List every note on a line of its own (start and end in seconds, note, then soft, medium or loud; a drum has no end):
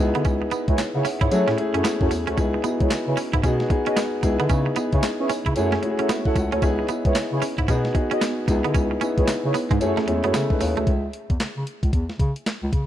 0.00 0.11 C#2 loud
0.00 0.43 B3 medium
0.00 0.43 D#4 medium
0.00 0.44 E4 medium
0.00 0.44 G#4 loud
0.15 0.23 D3 medium
0.15 0.23 B3 medium
0.15 closed hi-hat soft
0.25 0.46 C#2 medium
0.25 0.37 C#4 medium
0.25 kick loud
0.25 closed hi-hat medium
0.25 tambourine medium
0.42 muted clean electric guitar stroke soft
0.51 0.64 B3 medium
0.51 closed hi-hat medium
0.51 tambourine medium
0.68 0.76 C#2 medium
0.68 0.79 E4 medium
0.68 0.79 G#4 medium
0.68 0.79 B4 medium
0.68 0.80 C#5 medium
0.68 kick loud
0.68 closed hi-hat soft
0.78 0.85 C#3 soft
0.78 muted clean electric guitar stroke soft
0.78 snare loud
0.78 clap medium
0.78 closed hi-hat medium
0.78 tambourine loud
0.94 1.03 C#3 loud
0.94 1.06 E4 medium
0.94 1.06 G#4 medium
0.94 1.06 B4 medium
0.94 1.06 C#5 medium
0.94 1.04 F#5 medium
1.05 1.17 C#4 medium
1.05 1.21 G#4 medium
1.05 1.20 E5 medium
1.05 open hi-hat medium
1.05 tambourine medium
1.21 1.29 G#2 medium
1.21 1.29 E4 medium
1.21 1.30 E4 medium
1.21 1.46 C#5 medium
1.21 kick loud
1.21 closed hi-hat medium
1.31 1.44 F#3 loud
1.31 1.54 A3 medium
1.31 1.54 C#4 medium
1.31 1.48 E4 medium
1.31 1.54 E4 medium
1.31 1.48 F#4 medium
1.31 1.54 G#4 loud
1.31 1.49 A4 medium
1.31 1.49 C#5 medium
1.31 closed hi-hat medium
1.31 tambourine medium
1.48 1.56 A2 loud
1.48 1.55 C#4 medium
1.48 snare medium
1.57 2.18 A3 medium
1.57 2.18 C#4 medium
1.57 2.18 E4 medium
1.57 2.19 G#4 loud
1.57 muted clean electric guitar stroke soft
1.57 closed hi-hat medium
1.74 1.82 F#2 loud
1.74 1.82 C#4 medium
1.74 1.85 E4 medium
1.74 1.85 F#4 medium
1.74 1.86 A4 medium
1.74 1.86 C#5 medium
1.74 closed hi-hat medium
1.84 1.96 B3 medium
1.84 snare loud
1.84 clap medium
1.84 closed hi-hat medium
1.84 tambourine loud
2.01 2.09 F#2 loud
2.01 2.12 E4 medium
2.01 2.12 F#4 medium
2.01 2.12 A4 medium
2.01 2.12 C#5 medium
2.01 kick medium
2.11 2.24 E2 medium
2.11 muted clean electric guitar stroke soft
2.11 open hi-hat medium
2.11 tambourine medium
2.27 2.35 D2 medium
2.27 2.35 C#4 medium
2.27 2.39 E4 medium
2.27 2.39 F#4 medium
2.27 2.39 A4 medium
2.27 2.39 C#5 medium
2.27 closed hi-hat medium
2.37 2.58 C#2 loud
2.37 2.58 B3 medium
2.37 2.50 C#4 medium
2.37 2.59 D#4 medium
2.37 2.59 E4 medium
2.37 2.59 G#4 loud
2.37 kick loud
2.37 closed hi-hat medium
2.37 tambourine medium
2.54 muted clean electric guitar stroke soft
2.63 3.42 B3 medium
2.63 2.76 B3 medium
2.63 3.42 D#4 medium
2.63 3.43 E4 medium
2.63 2.72 F#4 medium
2.63 closed hi-hat medium
2.63 tambourine medium
2.70 3.43 G#4 medium
2.80 2.88 C#2 medium
2.80 2.92 E4 medium
2.80 2.92 G#4 medium
2.80 2.92 B4 medium
2.80 2.92 C#5 medium
2.80 kick medium
2.80 closed hi-hat medium
2.90 2.97 C#3 soft
2.90 muted clean electric guitar stroke soft
2.90 snare loud
2.90 clap loud
2.90 closed hi-hat medium
2.90 tambourine loud
3.07 3.15 C#3 loud
3.07 3.18 E4 medium
3.07 3.18 G#4 medium
3.07 3.19 B4 medium
3.07 3.19 C#5 medium
3.17 3.29 C#4 medium
3.17 open hi-hat medium
3.17 tambourine medium
3.33 3.42 G#2 medium
3.33 3.41 E4 medium
3.33 kick medium
3.33 closed hi-hat medium
3.43 3.64 B2 loud
3.43 3.66 B3 medium
3.43 3.56 C#4 medium
3.43 3.66 D#4 medium
3.43 3.66 F#4 medium
3.43 3.67 G#4 loud
3.43 kick loud
3.43 closed hi-hat medium
3.43 tambourine medium
3.60 snare medium
3.70 4.22 B3 medium
3.70 4.22 D#4 medium
3.70 4.23 F#4 medium
3.70 4.23 G#4 loud
3.70 muted clean electric guitar stroke soft
3.70 kick medium
3.70 closed hi-hat medium
3.86 3.94 C#4 medium
3.86 3.98 F#4 medium
3.86 3.98 G#4 medium
3.86 3.98 B4 medium
3.86 3.98 D#5 medium
3.86 closed hi-hat medium
3.96 4.09 B3 medium
3.96 snare loud
3.96 clap medium
3.96 closed hi-hat medium
3.96 tambourine loud
4.23 4.36 C#2 loud
4.23 4.68 B3 medium
4.23 4.68 D#4 medium
4.23 4.69 E4 medium
4.23 4.69 G#4 loud
4.23 muted clean electric guitar stroke soft
4.23 kick medium
4.23 closed hi-hat medium
4.23 tambourine medium
4.40 4.48 D3 loud
4.40 4.47 B3 medium
4.40 closed hi-hat soft
4.49 4.71 C#3 loud
4.49 4.62 C#4 medium
4.49 kick loud
4.49 closed hi-hat medium
4.49 tambourine medium
4.66 muted clean electric guitar stroke soft
4.76 5.55 B3 medium
4.76 4.89 B3 medium
4.76 5.55 D#4 medium
4.76 5.55 E4 medium
4.76 5.55 G#4 medium
4.76 closed hi-hat medium
4.76 tambourine medium
4.93 5.01 C#3 loud
4.93 5.04 E4 medium
4.93 5.04 G#4 medium
4.93 5.04 B4 medium
4.93 5.04 C#5 medium
4.93 kick medium
4.93 closed hi-hat soft
5.03 5.10 C#4 medium
5.03 muted clean electric guitar stroke soft
5.03 snare loud
5.03 clap medium
5.03 closed hi-hat medium
5.03 tambourine loud
5.19 5.28 C#4 medium
5.19 5.31 E4 medium
5.19 5.31 G#4 medium
5.19 5.31 B4 medium
5.19 5.31 C#5 medium
5.29 5.42 C#4 medium
5.29 open hi-hat medium
5.29 tambourine medium
5.46 5.54 C#3 loud
5.46 5.54 E4 medium
5.46 kick medium
5.46 closed hi-hat medium
5.56 5.77 F#2 loud
5.56 5.78 A3 medium
5.56 5.79 C#4 medium
5.56 5.73 E4 medium
5.56 5.79 E4 medium
5.56 5.73 F#4 medium
5.56 5.79 G#4 loud
5.56 5.73 A4 medium
5.56 5.73 C#5 medium
5.56 closed hi-hat medium
5.56 tambourine medium
5.72 5.80 C#4 medium
5.72 snare medium
5.82 6.43 A3 medium
5.82 6.43 C#4 medium
5.82 6.09 E4 medium
5.82 5.91 F#4 medium
5.82 muted clean electric guitar stroke soft
5.82 closed hi-hat medium
5.90 6.09 G#4 medium
5.99 6.07 C#4 medium
5.99 6.10 E4 medium
5.99 6.10 F#4 medium
5.99 6.10 A4 medium
5.99 6.11 C#5 medium
5.99 closed hi-hat medium
6.09 6.21 B3 medium
6.09 6.25 G#4 medium
6.09 6.25 E5 medium
6.09 snare loud
6.09 clap medium
6.09 closed hi-hat medium
6.09 tambourine loud
6.25 6.37 E4 medium
6.25 6.37 F#4 medium
6.25 6.37 A4 medium
6.25 6.52 A4 medium
6.25 6.37 C#5 medium
6.25 6.51 F#5 medium
6.25 kick medium
6.36 6.49 C#2 loud
6.36 muted clean electric guitar stroke soft
6.36 kick medium
6.36 closed hi-hat medium
6.36 tambourine medium
6.52 6.60 D2 medium
6.52 6.60 C#4 medium
6.52 6.63 E4 medium
6.52 6.62 E4 medium
6.52 6.63 F#4 medium
6.52 6.64 A4 medium
6.52 6.64 C#5 medium
6.52 6.78 C#5 medium
6.52 closed hi-hat soft
6.62 6.83 C#2 loud
6.62 6.84 B3 medium
6.62 6.75 C#4 medium
6.62 6.84 D#4 medium
6.62 6.84 E4 medium
6.62 6.84 G#4 loud
6.62 kick loud
6.62 closed hi-hat medium
6.62 tambourine medium
6.79 muted clean electric guitar stroke soft
6.88 7.01 B3 medium
6.88 7.67 B3 medium
6.88 7.67 D#4 medium
6.88 7.68 E4 medium
6.88 7.68 G#4 medium
6.88 closed hi-hat medium
6.88 tambourine medium
7.05 7.13 C#2 medium
7.05 7.16 E4 medium
7.05 7.17 G#4 medium
7.05 7.17 B4 medium
7.05 7.17 C#5 medium
7.05 kick medium
7.05 closed hi-hat medium
7.15 7.22 C#3 soft
7.15 muted clean electric guitar stroke soft
7.15 snare loud
7.15 clap medium
7.15 closed hi-hat medium
7.15 tambourine loud
7.32 7.40 C#3 loud
7.32 7.43 E4 medium
7.32 7.43 G#4 medium
7.32 7.43 B4 medium
7.32 7.43 C#5 medium
7.42 7.54 C#4 medium
7.42 open hi-hat medium
7.42 tambourine medium
7.58 7.66 G#2 medium
7.58 7.66 E4 medium
7.58 kick medium
7.58 closed hi-hat medium
7.68 7.89 B2 loud
7.68 7.91 B3 medium
7.68 7.81 C#4 medium
7.68 7.91 D#4 medium
7.68 7.91 F#4 medium
7.68 7.91 G#4 loud
7.68 kick medium
7.68 closed hi-hat medium
7.68 tambourine medium
7.85 snare medium
7.94 8.46 B3 medium
7.94 8.47 D#4 medium
7.94 8.48 F#4 medium
7.94 8.48 G#4 medium
7.94 muted clean electric guitar stroke soft
7.94 kick medium
7.94 closed hi-hat medium
8.11 8.19 C#4 medium
8.11 8.23 F#4 medium
8.11 8.23 G#4 medium
8.11 8.23 B4 medium
8.11 8.23 D#5 medium
8.11 closed hi-hat medium
8.21 8.34 B3 medium
8.21 snare loud
8.21 clap medium
8.21 closed hi-hat medium
8.21 tambourine loud
8.48 8.61 C#2 loud
8.48 8.93 B3 medium
8.48 8.93 D#4 medium
8.48 8.93 E4 medium
8.48 8.94 G#4 loud
8.48 muted clean electric guitar stroke soft
8.48 kick loud
8.48 closed hi-hat medium
8.48 tambourine medium
8.64 8.72 D3 medium
8.64 8.72 B3 medium
8.64 closed hi-hat soft
8.74 8.95 C#2 loud
8.74 8.87 C#4 medium
8.74 kick loud
8.74 closed hi-hat medium
8.74 tambourine medium
8.91 muted clean electric guitar stroke soft
9.01 9.80 B3 medium
9.01 9.13 C#4 medium
9.01 9.80 D#4 medium
9.01 9.80 E4 medium
9.01 9.80 G#4 medium
9.01 closed hi-hat medium
9.01 tambourine medium
9.17 9.26 C#2 medium
9.17 9.29 E4 medium
9.17 9.29 G#4 medium
9.17 9.29 B4 medium
9.17 9.29 C#5 medium
9.17 kick medium
9.17 closed hi-hat medium
9.28 9.35 C#3 soft
9.28 muted clean electric guitar stroke medium
9.28 snare loud
9.28 clap medium
9.28 closed hi-hat loud
9.28 tambourine loud
9.44 9.52 C#3 loud
9.44 9.55 E4 medium
9.44 9.55 G#4 medium
9.44 9.56 B4 medium
9.44 9.56 C#5 medium
9.54 9.66 B3 medium
9.54 open hi-hat medium
9.54 tambourine medium
9.71 9.79 G#2 loud
9.71 9.78 G#3 medium
9.71 kick medium
9.71 closed hi-hat medium
9.80 9.94 F#2 medium
9.80 10.03 A3 medium
9.80 10.03 C#4 medium
9.80 9.98 E4 medium
9.80 10.03 E4 medium
9.80 9.98 F#4 medium
9.80 10.04 G#4 loud
9.80 9.98 A4 medium
9.80 9.98 C#5 medium
9.80 closed hi-hat medium
9.80 tambourine medium
9.97 10.05 A3 medium
9.97 snare medium
10.07 10.20 E2 medium
10.07 10.15 G#3 medium
10.07 10.34 C#4 medium
10.07 10.34 E4 medium
10.07 10.34 G#4 medium
10.07 muted clean electric guitar stroke soft
10.07 closed hi-hat medium
10.13 10.71 A3 medium
10.24 10.32 F#2 medium
10.24 10.31 B3 medium
10.24 10.35 E4 medium
10.24 10.35 F#4 medium
10.24 10.35 A4 medium
10.24 10.35 C#5 medium
10.24 closed hi-hat medium
10.34 10.47 C#3 medium
10.34 10.46 B3 medium
10.34 10.50 C#4 medium
10.34 10.50 A4 medium
10.34 snare loud
10.34 clap medium
10.34 closed hi-hat medium
10.34 tambourine loud
10.50 10.61 D#4 medium
10.50 10.60 B4 medium
10.50 kick medium
10.60 10.73 D#2 loud
10.60 10.77 E4 medium
10.60 10.76 C#5 medium
10.60 muted clean electric guitar stroke soft
10.60 open hi-hat medium
10.60 tambourine medium
10.77 10.85 D2 medium
10.77 10.85 A3 medium
10.77 11.02 G#4 medium
10.77 11.02 E5 medium
10.77 closed hi-hat soft
10.87 11.08 C#2 medium
10.87 kick loud
10.87 closed hi-hat medium
11.13 closed hi-hat medium
11.30 11.38 E2 medium
11.30 kick medium
11.30 closed hi-hat soft
11.40 11.47 C#3 soft
11.40 snare loud
11.40 clap medium
11.40 closed hi-hat medium
11.57 11.65 C#3 medium
11.67 closed hi-hat medium
11.83 11.91 C#2 medium
11.83 kick medium
11.83 closed hi-hat medium
11.93 12.06 E2 medium
11.93 kick medium
11.93 closed hi-hat medium
12.09 snare medium
12.19 12.33 C#3 loud
12.19 kick medium
12.19 closed hi-hat medium
12.36 closed hi-hat medium
12.46 snare loud
12.46 clap medium
12.46 closed hi-hat medium
12.63 12.71 C#2 medium
12.73 12.86 C#3 medium
12.73 kick medium
12.73 closed hi-hat medium